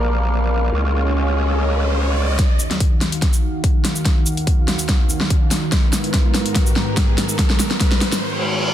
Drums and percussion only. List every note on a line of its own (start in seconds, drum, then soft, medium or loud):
2.39 kick medium
2.39 snare soft
2.39 closed hi-hat medium
2.60 shaker medium
2.71 snare soft
2.71 closed hi-hat medium
2.80 kick medium
2.80 closed hi-hat medium
3.01 snare soft
3.01 open hi-hat medium
3.12 closed hi-hat medium
3.22 kick medium
3.22 snare medium
3.22 closed hi-hat medium
3.33 shaker soft
3.64 kick medium
3.64 closed hi-hat medium
3.85 snare medium
3.85 open hi-hat medium
3.96 shaker medium
4.05 kick medium
4.05 snare medium
4.05 closed hi-hat medium
4.26 shaker medium
4.37 closed hi-hat soft
4.47 kick medium
4.47 closed hi-hat medium
4.68 snare medium
4.68 open hi-hat medium
4.79 closed hi-hat medium
4.79 shaker medium
4.89 kick loud
4.89 snare medium
4.89 closed hi-hat medium
5.10 shaker medium
5.21 snare medium
5.30 kick medium
5.30 closed hi-hat medium
5.51 snare medium
5.51 open hi-hat medium
5.51 shaker medium
5.72 kick loud
5.72 snare medium
5.72 closed hi-hat medium
5.93 snare medium
5.93 shaker medium
6.04 closed hi-hat medium
6.14 kick medium
6.14 snare medium
6.14 closed hi-hat medium
6.35 snare medium
6.35 open hi-hat medium
6.46 closed hi-hat soft
6.55 kick medium
6.55 snare medium
6.55 closed hi-hat medium
6.66 shaker medium
6.76 snare medium
6.97 kick medium
6.97 snare medium
6.97 closed hi-hat medium
7.18 snare medium
7.18 open hi-hat medium
7.29 shaker medium
7.39 kick medium
7.39 snare medium
7.39 closed hi-hat medium
7.50 snare medium
7.60 snare medium
7.60 shaker medium
7.71 snare medium
7.71 closed hi-hat soft
7.80 kick loud
7.80 snare loud
7.80 closed hi-hat medium
7.92 snare medium
8.01 snare loud
8.01 open hi-hat medium
8.12 snare medium
8.12 closed hi-hat medium
8.12 shaker medium